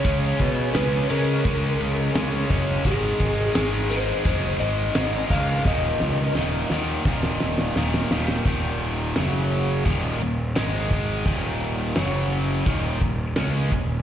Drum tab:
RD |x-x-x-x-x-x-x-x-|x-x-x-x-x-x-x-x-|----------------|----------------|
HH |----------------|----------------|----------------|x-x-x-x-x-x-x-x-|
SD |----o-------o---|----o-o-----o---|o-o-o-o-oooooooo|----oo------o---|
BD |o-o-----o-----o-|o-o-----o-----o-|o-------o-------|o-------o-----o-|

RD |----------------|
HH |x-x-x-x-x-x-x-x-|
SD |----o-------o---|
BD |o-------o-o---o-|